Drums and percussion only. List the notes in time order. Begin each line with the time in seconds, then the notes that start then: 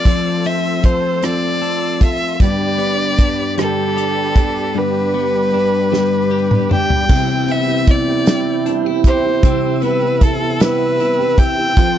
0.05 kick, closed hi-hat
0.44 closed hi-hat
0.83 kick, closed hi-hat
1.22 cross-stick, closed hi-hat
1.63 closed hi-hat
2.01 kick, closed hi-hat
2.40 kick, closed hi-hat
2.79 closed hi-hat
3.18 kick, closed hi-hat
3.58 cross-stick, closed hi-hat
3.98 closed hi-hat
4.36 kick, closed hi-hat
5.93 snare
6.51 mid tom
6.71 mid tom
6.90 floor tom
7.09 kick, crash
7.48 closed hi-hat
7.87 kick, closed hi-hat
8.26 snare, closed hi-hat
8.66 closed hi-hat
9.04 kick, closed hi-hat
9.43 kick, closed hi-hat
9.82 closed hi-hat
10.21 kick, closed hi-hat
10.60 snare, closed hi-hat
11.00 closed hi-hat
11.38 kick, closed hi-hat
11.77 kick, closed hi-hat